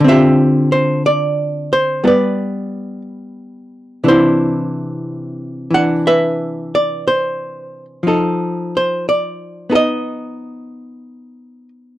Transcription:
0.00 2.02 D3 medium
0.04 2.03 C4 medium
0.04 2.03 F4 soft
0.04 0.71 C5 medium
0.09 0.72 G4 medium
0.09 0.69 E5 medium
0.72 1.02 C5 medium
1.06 1.72 D5 medium
1.73 2.03 C5 medium
2.04 4.03 G3 soft
2.04 4.04 B3 soft
2.04 2.07 F4 soft
2.04 2.07 A4 soft
2.04 4.02 B4 medium
2.04 3.01 D5 medium
4.04 8.04 C3 soft
4.04 5.69 E3 soft
4.04 5.73 D4 soft
4.08 6.03 E4 medium
4.08 5.69 C5 medium
5.71 8.03 E3 soft
5.71 8.05 D4 soft
5.71 6.07 F#5 medium
6.07 8.02 B4 medium
6.07 6.74 E5 medium
6.75 7.07 D5 medium
7.08 7.85 C5 medium
8.03 11.98 F3 soft
8.03 9.70 D#4 soft
8.08 9.71 A4 soft
8.77 9.08 C5 medium
9.09 9.72 D5 medium
9.70 11.98 B3 soft
9.70 11.98 D#4 soft
9.70 9.75 A4 soft
9.75 11.68 D#5 medium

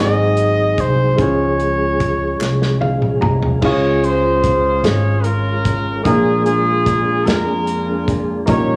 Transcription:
0.00 0.73 G#1 medium
0.00 1.14 G#2 soft
0.00 1.18 F#3 medium
0.00 1.14 G#3 soft
0.00 1.16 G#3 soft
0.00 1.18 C4 soft
0.00 1.15 D#4 medium
0.00 1.18 D#4 soft
0.00 1.18 F#4 soft
0.00 1.15 G#4 medium
0.00 1.18 G#4 medium
0.00 0.82 D#5 medium
0.37 closed hi-hat soft
0.78 1.15 C2 medium
0.78 1.23 C5 medium
0.78 kick medium
0.78 closed hi-hat medium
1.15 2.36 C#2 medium
1.15 2.35 C#3 medium
1.15 3.60 F3 medium
1.15 3.57 G#3 medium
1.15 3.57 C#4 medium
1.15 3.58 F4 medium
1.15 3.58 G#4 medium
1.15 3.60 G#4 medium
1.15 kick loud
1.15 closed hi-hat medium
1.20 3.58 G#3 medium
1.20 3.59 C#4 soft
1.20 2.82 C#5 medium
1.60 closed hi-hat soft
2.00 kick medium
2.00 closed hi-hat medium
2.40 3.17 C2 medium
2.40 snare soft
2.40 clap medium
2.62 snare soft
2.81 3.19 F5 medium
2.81 high tom medium
3.02 mid tom medium
3.21 3.59 C2 medium
3.21 3.59 A#5 medium
3.21 mid tom medium
3.42 floor tom medium
3.59 4.80 C#2 loud
3.59 4.80 C#3 medium
3.59 8.43 G#3 medium
3.59 6.01 G#3 medium
3.59 6.02 C#4 medium
3.59 6.02 F4 medium
3.59 kick loud
3.59 crash medium
3.64 4.04 F4 medium
3.64 6.02 G#4 medium
3.64 4.05 G#4 medium
3.64 4.01 C#5 medium
3.64 6.03 F5 medium
4.04 5.22 F4 medium
4.04 5.22 G#4 medium
4.04 4.85 C5 medium
4.04 closed hi-hat soft
4.44 kick medium
4.44 closed hi-hat medium
4.84 6.01 G#1 medium
4.84 5.24 C#5 loud
4.84 snare medium
4.84 closed hi-hat medium
5.24 6.02 C#4 medium
5.24 6.02 F4 medium
5.24 6.05 A#4 loud
5.24 closed hi-hat medium
5.65 kick medium
5.65 closed hi-hat medium
6.03 7.23 A#1 medium
6.03 7.23 A#2 medium
6.03 8.46 F3 medium
6.03 8.43 A#3 medium
6.03 8.76 A#3 soft
6.03 8.44 D4 medium
6.03 6.45 D4 medium
6.03 8.47 D4 medium
6.03 8.44 F4 medium
6.03 6.45 F4 medium
6.03 6.42 G#4 medium
6.03 8.46 G#4 medium
6.03 8.45 G#4 medium
6.03 8.45 A#4 medium
6.03 kick loud
6.03 closed hi-hat medium
6.44 7.26 D4 medium
6.44 7.26 F4 medium
6.44 7.22 G#4 medium
6.44 closed hi-hat soft
6.86 kick medium
6.86 closed hi-hat medium
7.24 8.44 F2 medium
7.24 8.44 D4 medium
7.24 8.45 F4 medium
7.24 8.17 A#4 medium
7.24 snare loud
7.24 closed hi-hat medium
7.67 closed hi-hat medium
8.08 kick medium
8.08 closed hi-hat medium
8.46 8.76 A#1 loud
8.46 8.76 A#2 medium
8.46 8.76 D#3 medium
8.46 8.76 G3 medium
8.46 8.76 A#3 medium
8.46 8.76 C#4 medium
8.46 8.76 D#4 medium
8.46 8.76 G4 medium
8.46 8.76 A#4 medium
8.46 8.76 C#5 medium
8.46 kick loud
8.46 closed hi-hat medium

